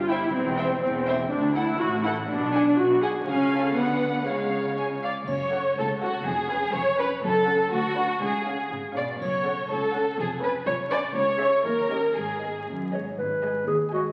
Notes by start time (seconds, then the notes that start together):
Already playing: G1 G2
0.09 E4 C5 E5 G5
0.34 E1 E2 C4
0.58 C5 E5 G5
0.82 E1 E2 C4
1.06 C5 E5 G5
1.31 D2 D4
1.55 E4 A4 F#5
1.80 A1 A2 F#4
2.04 E4 A4 F#5
2.29 B1 B2 D4
2.53 G#4 F#5 G#5
2.77 B1 B2 F#4
3.01 G#4 F#5 G#5
3.26 C#2 C#3 C#4 G#4 F5 G#5
3.52 A4
3.75 D2 D3 B3 B4 F#5
4.26 C#2 C#3 G#3 C#5 F5
4.78 G#5
5.03 D5 F5
5.28 F#1 F#2 C#5, triangle
5.52 C#4 A4 F#5
5.77 C#2 A4
6.02 C#4 F#4 A4 F#5
6.26 F1 F2 G#4
6.50 C#4 B4 G#5
6.75 F1 F2 C#5
6.98 C#4 B4 G#5
7.23 F#1 F#2 A4
7.47 C#4 A4 F#5
7.71 D2 F#4
7.96 D4 B4 F#5
8.21 C#2 G#4
8.45 C#4 G#4 F5
8.71 G#1 C#3
8.95 B2 C#4 G#4 D5 F5
9.20 F#1 F#2 C#5, triangle
9.45 C#4 A4 F#5
9.70 C#2 A4
9.94 C#4 A4 F#5
10.19 F1 F2 G#4
10.42 C#4 B4 G#5
10.67 F1 F2 C#5
10.91 C#4 B4 D5 G#5
11.15 C#2 C#5
11.40 C#4 G#4 E5
11.65 D#2 A#4
11.90 C#4 G4 D#5
12.16 G#1 G#2 G#4
12.42 B3 G#4 D#5
12.68 D#2 F#2
12.92 G#2 B3 G#4 C#5 D#5
13.18 G#1 G#2 B4
13.43 G#3 D#5 G#5
13.67 D#2 G#4
13.92 G#3 F#4 D#5 G#5